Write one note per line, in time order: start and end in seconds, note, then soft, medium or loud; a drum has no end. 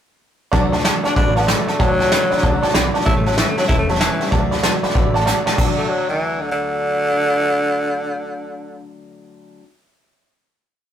0.52 0.89 D2 medium
0.52 0.72 D3 medium
0.52 0.73 F#3 medium
0.52 0.73 A3 medium
0.52 0.72 D4 loud
0.52 0.71 F#4 loud
0.52 0.64 D5 loud
0.52 0.64 F#5 loud
0.52 0.65 A5 loud
0.52 kick loud
0.52 snare soft
0.72 0.84 A3 soft
0.72 0.84 D4 medium
0.72 0.84 F#4 medium
0.72 0.80 D5 medium
0.72 0.80 F#5 medium
0.72 0.80 A5 medium
0.72 snare soft
0.79 snare soft
0.84 1.04 F#3 medium
0.84 1.05 A3 medium
0.84 1.04 D4 medium
0.84 1.02 F#4 medium
0.84 0.97 D5 medium
0.84 0.97 F#5 medium
0.84 0.97 A5 medium
0.84 snare loud
0.84 hi-hat pedal medium
1.03 1.15 A3 soft
1.03 1.16 D4 medium
1.03 1.15 D4 medium
1.03 1.16 F#4 medium
1.03 1.11 D5 medium
1.03 1.11 F#5 medium
1.03 1.11 A5 medium
1.03 muted upright bass stroke medium
1.03 snare soft
1.15 1.53 A1 medium
1.15 1.36 D3 medium
1.15 1.36 F#3 medium
1.15 1.36 A3 medium
1.15 1.36 D4 medium
1.15 1.34 F#4 medium
1.15 1.28 D5 medium
1.15 1.28 F#5 medium
1.15 1.29 B5 medium
1.15 kick loud
1.15 snare soft
1.36 1.47 A3 soft
1.36 1.47 B3 medium
1.36 1.47 D4 soft
1.36 1.48 F#4 medium
1.36 1.43 D5 medium
1.36 1.43 F#5 medium
1.36 1.44 A5 loud
1.36 snare soft
1.42 snare soft
1.47 1.68 F#3 medium
1.47 1.81 A3 medium
1.47 1.68 A3 medium
1.47 1.68 D4 medium
1.47 1.67 F#4 medium
1.47 1.60 D5 medium
1.47 1.60 F#5 medium
1.47 1.60 B5 loud
1.47 snare loud
1.47 hi-hat pedal medium
1.68 1.79 A3 soft
1.68 1.80 D4 soft
1.68 1.80 F#4 medium
1.68 1.75 D5 medium
1.68 1.75 F#5 medium
1.68 1.75 A5 medium
1.68 muted upright bass stroke medium
1.68 snare soft
1.79 2.16 D2 medium
1.79 2.00 D3 medium
1.79 2.72 F#3 loud
1.79 2.00 F#3 medium
1.79 2.00 A3 medium
1.79 1.99 D4 medium
1.79 1.98 F#4 medium
1.79 1.92 D5 loud
1.79 1.92 F#5 medium
1.79 1.92 A5 loud
1.79 kick loud
1.79 snare soft
1.99 2.11 A3 soft
1.99 2.11 D4 medium
1.99 2.11 F#4 medium
1.99 2.06 D5 medium
1.99 2.07 F#5 medium
1.99 2.07 A5 medium
1.99 snare soft
2.06 snare soft
2.11 2.31 F#3 medium
2.11 2.32 A3 medium
2.11 2.31 D4 medium
2.11 2.30 F#4 medium
2.11 2.23 D5 medium
2.11 2.23 F#5 medium
2.11 2.24 B5 medium
2.11 snare loud
2.11 hi-hat pedal medium
2.31 2.43 A3 medium
2.31 2.43 D4 medium
2.31 2.43 F#4 medium
2.31 2.38 D5 loud
2.31 2.38 F#5 medium
2.31 2.39 B5 loud
2.31 muted upright bass stroke medium
2.31 snare soft
2.38 snare soft
2.43 2.60 C#2 medium
2.43 2.63 D3 medium
2.43 2.63 F#3 medium
2.43 2.63 A3 medium
2.43 2.63 D4 medium
2.43 2.62 F#4 medium
2.43 2.55 D5 medium
2.43 2.55 F#5 medium
2.43 2.55 A5 loud
2.43 kick loud
2.43 snare soft
2.63 2.74 A3 medium
2.63 2.75 D4 medium
2.63 2.74 F#4 medium
2.63 2.70 D5 loud
2.63 2.70 F#5 loud
2.63 2.70 A5 loud
2.63 muted upright bass stroke medium
2.63 snare soft
2.69 snare soft
2.74 2.92 B1 medium
2.74 2.94 F#3 medium
2.74 2.95 A3 medium
2.74 2.95 D4 medium
2.74 2.94 F#4 medium
2.74 2.86 D5 loud
2.74 2.86 F#5 loud
2.74 2.87 B5 loud
2.74 snare loud
2.74 hi-hat pedal medium
2.94 3.06 A3 medium
2.94 3.07 D4 medium
2.94 3.06 F#4 medium
2.94 3.01 D5 loud
2.94 3.01 F#5 medium
2.94 3.02 A5 loud
2.94 snare soft
3.01 snare soft
3.05 3.42 A1 medium
3.05 3.26 A2 medium
3.05 3.26 E3 medium
3.05 3.26 G3 medium
3.05 3.26 A3 medium
3.05 3.25 C#4 loud
3.05 3.16 E4 loud
3.05 3.24 A4 medium
3.05 3.18 C#5 loud
3.05 3.18 E5 medium
3.05 3.18 A5 loud
3.05 kick loud
3.05 snare soft
3.16 3.26 A3 medium
3.25 3.39 F#3 medium
3.25 3.36 G3 soft
3.25 3.37 A3 soft
3.25 3.38 C#4 medium
3.25 3.37 A4 medium
3.25 3.33 C#5 medium
3.25 3.33 E5 medium
3.25 3.33 A5 medium
3.25 snare soft
3.32 snare soft
3.37 3.58 G3 medium
3.37 3.58 A3 medium
3.37 3.57 C#4 medium
3.37 3.47 E4 medium
3.37 3.56 A4 medium
3.37 3.49 C#5 medium
3.37 3.49 E5 medium
3.37 3.50 F#5 medium
3.37 snare loud
3.37 hi-hat pedal medium
3.48 3.57 A3 medium
3.57 3.67 F#3 loud
3.57 3.69 G3 soft
3.57 3.69 A3 medium
3.57 3.70 C#4 medium
3.57 3.69 A4 medium
3.57 3.64 C#5 medium
3.57 3.64 E5 medium
3.57 3.64 A5 medium
3.57 muted upright bass stroke medium
3.57 snare soft
3.63 snare soft
3.68 4.05 E1 loud
3.68 3.89 A2 medium
3.68 3.89 E3 medium
3.68 3.90 G3 medium
3.68 3.89 A3 medium
3.68 3.88 C#4 medium
3.68 3.78 E4 medium
3.68 3.88 A4 medium
3.68 3.81 C#5 medium
3.68 3.81 E5 medium
3.68 3.81 A5 medium
3.68 kick loud
3.68 snare soft
3.78 3.91 A3 medium
3.89 3.99 F#3 medium
3.89 3.99 G3 soft
3.89 3.99 A3 soft
3.89 4.00 C#4 medium
3.89 4.00 A4 medium
3.89 3.96 C#5 loud
3.89 3.96 E5 medium
3.89 3.96 A5 loud
3.89 snare soft
3.95 snare soft
4.00 4.31 E3 medium
4.00 4.20 G3 medium
4.00 4.21 A3 medium
4.00 4.20 C#4 medium
4.00 4.19 A4 medium
4.00 4.12 C#5 loud
4.00 4.13 E5 medium
4.00 4.13 A5 loud
4.00 snare loud
4.00 hi-hat pedal medium
4.20 4.33 G3 soft
4.20 4.32 A3 medium
4.20 4.32 C#4 medium
4.20 4.32 A4 medium
4.20 4.27 C#5 medium
4.20 4.27 E5 medium
4.20 4.28 F#5 medium
4.20 muted upright bass stroke medium
4.20 snare soft
4.26 snare soft
4.31 4.68 D2 medium
4.31 4.52 D3 medium
4.31 4.52 F#3 medium
4.31 4.53 A3 medium
4.31 4.53 F#4 medium
4.31 4.51 A4 medium
4.31 4.44 D5 loud
4.31 4.44 F#5 medium
4.31 4.44 A5 loud
4.31 kick loud
4.31 snare soft
4.51 4.63 A3 medium
4.51 4.64 F#4 medium
4.51 4.64 A4 medium
4.51 4.59 D5 medium
4.51 4.59 F#5 medium
4.51 4.59 B5 medium
4.51 snare soft
4.58 snare soft
4.63 4.83 F#3 medium
4.63 4.84 A3 medium
4.63 4.84 F#4 medium
4.63 4.82 A4 medium
4.63 4.75 D5 medium
4.63 4.75 F#5 medium
4.63 4.76 A5 medium
4.63 snare loud
4.63 hi-hat pedal medium
4.83 4.95 A3 medium
4.83 4.95 F#4 medium
4.83 4.95 A4 medium
4.83 4.90 D5 loud
4.83 4.91 F#5 medium
4.83 4.91 B5 loud
4.83 muted upright bass stroke medium
4.83 snare soft
4.90 snare soft
4.95 5.31 A1 medium
4.95 5.15 D3 medium
4.95 5.15 F#3 medium
4.95 5.15 A3 medium
4.95 5.15 F#4 loud
4.95 5.14 A4 medium
4.95 5.07 D5 medium
4.95 5.07 F#5 medium
4.95 5.07 B5 loud
4.95 kick loud
4.95 snare soft
5.14 5.26 A3 soft
5.14 5.26 F#4 medium
5.14 5.27 A4 medium
5.14 5.22 D5 loud
5.14 5.22 F#5 loud
5.14 5.22 A5 loud
5.14 snare soft
5.21 snare soft
5.26 5.46 F#3 medium
5.26 5.47 A3 medium
5.26 5.46 F#4 medium
5.26 5.45 A4 medium
5.26 5.38 D5 loud
5.26 5.38 F#5 loud
5.26 5.39 A5 loud
5.26 snare medium
5.26 hi-hat pedal medium
5.46 5.58 A3 medium
5.46 5.58 F#4 medium
5.46 5.58 A4 medium
5.46 5.53 D5 medium
5.46 5.53 F#5 medium
5.46 5.54 A5 loud
5.46 muted upright bass stroke medium
5.46 snare medium
5.56 9.58 D2 medium
5.56 9.60 D3 medium
5.56 9.61 F#3 medium
5.56 9.62 A3 medium
5.56 9.57 D5 medium
5.56 9.57 F#5 medium
5.56 kick loud
5.56 crash loud
5.60 9.63 D4 medium
5.60 9.64 F#4 medium
5.60 9.59 A5 medium
5.78 5.90 A3 medium
5.89 6.09 F#3 medium
6.09 6.42 E3 medium
6.41 6.51 D3 medium
6.52 8.87 D3 loud